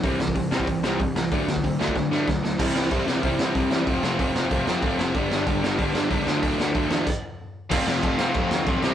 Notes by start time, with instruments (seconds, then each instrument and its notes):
0.03 picked electric bass C2, overdriven electric guitar C3 E3 G3 C4, kick, open hi-hat
0.20 picked electric bass C2, overdriven electric guitar C3 E3 G3, snare
0.28 kick
0.35 picked electric bass C2, overdriven electric guitar C3 E3 G3, kick, open hi-hat
0.51 picked electric bass E2, overdriven electric guitar C3 E3 G3 C4, snare
0.60 kick
0.67 picked electric bass C2, overdriven electric guitar C3 E3 G3, kick, open hi-hat
0.83 picked electric bass C2, overdriven electric guitar C3 E3 G3 C4, snare
0.99 picked electric bass C2, overdriven electric guitar C3 E3 G3, kick, open hi-hat
1.16 overdriven electric guitar C3 E3 G3, snare
1.32 picked electric bass D2, overdriven electric guitar D3 F#3 A3 D4, kick, open hi-hat
1.46 picked electric bass D2, overdriven electric guitar D3 F#3 A3, snare
1.56 kick
1.64 picked electric bass C3, overdriven electric guitar D3 F#3 A3, kick, open hi-hat
1.78 picked electric bass D2, overdriven electric guitar D3 F#3 A3 D4, snare
1.88 kick
1.95 picked electric bass G2, overdriven electric guitar D3 F#3 A3, kick, snare
2.11 overdriven electric guitar D3 F#3 A3 D4, snare
2.28 picked electric bass D2, overdriven electric guitar D3 F#3 A3, kick, snare
2.43 picked electric bass D2, overdriven electric guitar D3 F#3 A3, snare
2.58 picked electric bass C2, overdriven electric guitar C3 E3 G3 C4 E4, kick, crash
2.74 picked electric bass C2, overdriven electric guitar C3 E3 G3 C4 E4, snare
2.90 picked electric bass C2, overdriven electric guitar C3 E3 G3 C4 E4, kick, open hi-hat
3.06 picked electric bass C2, overdriven electric guitar C3 E3 G3 C4 E4, snare
3.22 picked electric bass C2, overdriven electric guitar C3 E3 G3 C4 E4, kick, open hi-hat
3.39 picked electric bass C3, overdriven electric guitar C3 E3 G3 C4 E4, snare
3.54 picked electric bass C2, overdriven electric guitar C3 E3 G3 C4 E4, kick, open hi-hat
3.70 picked electric bass E2, overdriven electric guitar C3 E3 G3 C4 E4, snare
3.87 picked electric bass F1, overdriven electric guitar F2 C3 F3 A3 C4 F4, kick, open hi-hat
4.02 picked electric bass F1, overdriven electric guitar F2 C3 F3 A3 C4 F4, snare
4.19 picked electric bass F1, overdriven electric guitar F2 C3 F3 A3 C4 F4, kick, open hi-hat
4.34 picked electric bass F1, overdriven electric guitar F2 C3 F3 A3 C4 F4, snare
4.51 picked electric bass C2, overdriven electric guitar F2 C3 F3 A3 C4 F4, kick, open hi-hat
4.66 picked electric bass F1, overdriven electric guitar F2 C3 F3 A3 C4 F4, snare
4.82 picked electric bass C2, overdriven electric guitar F2 C3 F3 A3 C4 F4, kick, open hi-hat
4.98 picked electric bass F1, overdriven electric guitar F2 C3 F3 A3 C4 F4, snare
5.14 picked electric bass G1, overdriven electric guitar G2 D3 G3 B3 D4, kick, open hi-hat
5.30 picked electric bass G1, overdriven electric guitar G2 D3 G3 B3 D4, snare
5.46 picked electric bass G1, overdriven electric guitar G2 D3 G3 B3 D4, kick, open hi-hat
5.62 picked electric bass G1, overdriven electric guitar G2 D3 G3 B3 D4, snare
5.78 picked electric bass G1, overdriven electric guitar G2 D3 G3 B3 D4, kick, open hi-hat
5.93 overdriven electric guitar G2 D3 G3 B3 D4, picked electric bass G2, snare
6.10 picked electric bass C#2, overdriven electric guitar G2 D3 G3 B3 D4, kick, open hi-hat
6.27 picked electric bass D2, overdriven electric guitar D3 F#3 A3 D4, snare
6.42 picked electric bass D2, overdriven electric guitar D3 F#3 A3 D4, kick, open hi-hat
6.58 picked electric bass D2, overdriven electric guitar D3 F#3 A3 D4, snare
6.74 picked electric bass D2, overdriven electric guitar D3 F#3 A3 D4, kick, open hi-hat
6.90 picked electric bass E2, overdriven electric guitar D3 F#3 A3 D4, snare
7.07 kick, crash
7.70 picked electric bass F1, overdriven electric guitar F2 C3 F3 A3 C4 F4 A4, kick, crash
7.87 picked electric bass F1, snare
8.03 picked electric bass F1, kick, crash
8.18 picked electric bass F1, overdriven electric guitar F2 C3 F3 A3 C4 F4, snare
8.34 picked electric bass F1, kick, crash
8.51 picked electric bass D2, snare
8.66 picked electric bass B1, overdriven electric guitar F2 C3 F3 A3 C4 F4, kick, crash
8.83 picked electric bass C2, overdriven electric guitar C3 E3 G3 C4 E4 G4, snare